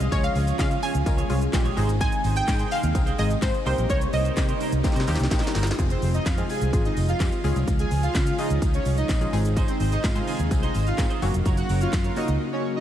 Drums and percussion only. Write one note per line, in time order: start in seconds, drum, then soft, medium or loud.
0.00 closed hi-hat medium
0.00 shaker medium
0.12 kick loud
0.12 closed hi-hat medium
0.12 tambourine soft
0.12 shaker medium
0.23 closed hi-hat medium
0.23 tambourine soft
0.23 shaker medium
0.35 open hi-hat medium
0.35 tambourine soft
0.35 shaker medium
0.47 closed hi-hat medium
0.47 tambourine soft
0.47 shaker medium
0.59 kick loud
0.59 snare loud
0.59 clap loud
0.59 closed hi-hat medium
0.59 tambourine medium
0.59 shaker medium
0.71 closed hi-hat medium
0.71 shaker medium
0.82 open hi-hat medium
0.82 tambourine soft
0.82 shaker medium
0.95 closed hi-hat medium
0.95 shaker medium
1.06 kick loud
1.06 closed hi-hat medium
1.06 tambourine medium
1.06 shaker medium
1.18 closed hi-hat medium
1.18 shaker medium
1.30 open hi-hat medium
1.30 tambourine medium
1.30 shaker medium
1.42 closed hi-hat medium
1.42 shaker medium
1.53 kick loud
1.53 snare loud
1.53 clap loud
1.53 closed hi-hat medium
1.53 tambourine loud
1.53 shaker medium
1.65 closed hi-hat soft
1.65 shaker soft
1.77 open hi-hat medium
1.77 tambourine medium
1.77 shaker medium
1.89 closed hi-hat medium
1.89 tambourine soft
1.89 shaker medium
2.01 kick loud
2.01 closed hi-hat medium
2.01 tambourine soft
2.01 shaker medium
2.12 closed hi-hat medium
2.12 shaker medium
2.24 open hi-hat medium
2.24 tambourine soft
2.24 shaker medium
2.36 closed hi-hat medium
2.36 tambourine soft
2.36 shaker medium
2.48 kick loud
2.48 snare loud
2.48 clap loud
2.48 closed hi-hat medium
2.48 tambourine medium
2.48 shaker medium
2.59 closed hi-hat medium
2.59 shaker medium
2.71 open hi-hat medium
2.71 tambourine medium
2.71 shaker medium
2.83 closed hi-hat medium
2.83 shaker medium
2.95 kick loud
2.95 closed hi-hat medium
2.95 tambourine medium
2.95 shaker medium
3.07 closed hi-hat medium
3.07 shaker medium
3.18 open hi-hat medium
3.18 tambourine medium
3.18 shaker medium
3.30 closed hi-hat medium
3.30 tambourine soft
3.30 shaker medium
3.42 kick loud
3.42 snare loud
3.42 clap loud
3.42 closed hi-hat medium
3.42 tambourine medium
3.42 shaker medium
3.54 closed hi-hat soft
3.54 shaker soft
3.66 open hi-hat medium
3.66 tambourine medium
3.66 shaker medium
3.78 closed hi-hat medium
3.78 shaker medium
3.90 kick loud
3.90 closed hi-hat medium
3.90 tambourine soft
3.90 shaker medium
4.01 closed hi-hat medium
4.01 shaker medium
4.13 open hi-hat medium
4.13 tambourine soft
4.13 shaker medium
4.25 closed hi-hat medium
4.25 tambourine soft
4.25 shaker medium
4.36 kick loud
4.36 snare medium
4.36 clap loud
4.36 closed hi-hat medium
4.36 tambourine medium
4.36 shaker medium
4.49 closed hi-hat medium
4.49 shaker medium
4.60 open hi-hat medium
4.60 tambourine soft
4.60 shaker medium
4.72 closed hi-hat medium
4.72 shaker loud
4.84 kick loud
4.84 snare medium
4.84 closed hi-hat medium
4.84 tambourine medium
4.84 shaker medium
4.92 snare medium
4.92 closed hi-hat medium
4.92 shaker medium
5.00 snare medium
5.07 snare medium
5.07 open hi-hat medium
5.07 tambourine medium
5.07 shaker medium
5.16 snare medium
5.16 closed hi-hat medium
5.16 shaker medium
5.23 snare medium
5.31 kick loud
5.31 snare loud
5.31 closed hi-hat medium
5.31 tambourine medium
5.31 shaker medium
5.39 snare medium
5.43 snare loud
5.43 closed hi-hat soft
5.43 shaker soft
5.55 snare medium
5.55 open hi-hat medium
5.55 tambourine medium
5.55 shaker medium
5.63 snare loud
5.63 tambourine soft
5.67 snare loud
5.67 closed hi-hat medium
5.67 shaker medium
5.79 kick loud
5.79 closed hi-hat medium
5.79 tambourine soft
5.79 shaker medium
5.90 closed hi-hat medium
5.90 shaker medium
6.02 open hi-hat medium
6.02 tambourine soft
6.02 shaker medium
6.14 closed hi-hat medium
6.14 shaker medium
6.26 kick loud
6.26 snare loud
6.26 clap loud
6.26 closed hi-hat medium
6.26 tambourine medium
6.26 shaker medium
6.38 closed hi-hat medium
6.38 shaker medium
6.50 open hi-hat medium
6.50 tambourine medium
6.50 shaker medium
6.61 closed hi-hat medium
6.61 shaker medium
6.73 kick loud
6.73 closed hi-hat medium
6.73 tambourine medium
6.73 shaker medium
6.85 closed hi-hat medium
6.85 shaker medium
6.97 open hi-hat medium
6.97 tambourine medium
6.97 shaker medium
7.08 closed hi-hat medium
7.08 tambourine soft
7.08 shaker medium
7.20 kick loud
7.20 snare loud
7.20 clap loud
7.20 closed hi-hat medium
7.20 tambourine medium
7.20 shaker medium
7.32 closed hi-hat soft
7.32 shaker soft
7.44 open hi-hat medium
7.44 tambourine medium
7.44 shaker medium
7.56 closed hi-hat medium
7.56 tambourine soft
7.56 shaker medium
7.68 kick loud
7.68 closed hi-hat medium
7.68 tambourine soft
7.68 shaker medium
7.79 closed hi-hat medium
7.79 shaker medium
7.91 open hi-hat medium
7.91 tambourine soft
7.91 shaker medium
8.03 closed hi-hat medium
8.03 tambourine soft
8.03 shaker medium
8.15 kick loud
8.15 snare loud
8.15 clap loud
8.15 closed hi-hat medium
8.15 tambourine medium
8.15 shaker medium
8.27 closed hi-hat medium
8.27 shaker medium
8.38 open hi-hat medium
8.38 tambourine soft
8.38 shaker medium
8.50 closed hi-hat medium
8.50 shaker medium
8.62 kick loud
8.62 closed hi-hat medium
8.62 tambourine medium
8.62 shaker medium
8.74 closed hi-hat medium
8.74 shaker medium
8.85 open hi-hat medium
8.85 tambourine medium
8.85 shaker medium
8.97 closed hi-hat medium
8.97 tambourine soft
8.97 shaker medium
9.09 kick loud
9.09 snare loud
9.09 clap loud
9.09 closed hi-hat medium
9.09 tambourine medium
9.09 shaker medium
9.21 closed hi-hat soft
9.21 shaker soft
9.33 open hi-hat medium
9.33 tambourine medium
9.33 shaker medium
9.45 closed hi-hat medium
9.45 tambourine soft
9.45 shaker medium
9.57 kick loud
9.57 closed hi-hat medium
9.57 tambourine soft
9.57 shaker medium
9.68 closed hi-hat medium
9.68 shaker medium
9.80 open hi-hat medium
9.80 tambourine soft
9.80 shaker medium
9.92 closed hi-hat medium
9.92 tambourine soft
9.92 shaker medium
10.04 kick loud
10.04 snare loud
10.04 clap loud
10.04 closed hi-hat medium
10.04 tambourine medium
10.04 shaker medium
10.15 closed hi-hat medium
10.15 shaker medium
10.27 open hi-hat medium
10.27 tambourine medium
10.27 shaker medium
10.39 closed hi-hat medium
10.39 shaker medium
10.51 kick loud
10.51 closed hi-hat medium
10.51 tambourine medium
10.51 shaker medium
10.63 closed hi-hat medium
10.63 shaker medium
10.75 open hi-hat medium
10.75 tambourine medium
10.75 shaker medium
10.87 closed hi-hat medium
10.87 shaker medium
10.98 kick loud
10.98 snare medium
10.98 clap loud
10.98 closed hi-hat medium
10.98 tambourine medium
10.98 shaker medium
11.10 closed hi-hat soft
11.10 shaker soft
11.22 open hi-hat medium
11.22 tambourine medium
11.22 shaker medium
11.34 closed hi-hat medium
11.34 shaker medium
11.46 kick loud
11.46 closed hi-hat medium
11.46 tambourine soft
11.46 shaker medium
11.57 closed hi-hat medium
11.57 tambourine soft
11.57 shaker medium
11.69 open hi-hat medium
11.69 tambourine soft
11.69 shaker medium
11.81 closed hi-hat medium
11.81 shaker medium
11.93 kick loud
11.93 snare loud
11.93 clap loud
11.93 closed hi-hat medium
11.93 tambourine medium
11.93 shaker medium
12.04 closed hi-hat medium
12.04 shaker medium
12.16 open hi-hat medium
12.16 tambourine soft
12.16 shaker medium
12.28 closed hi-hat medium
12.28 shaker medium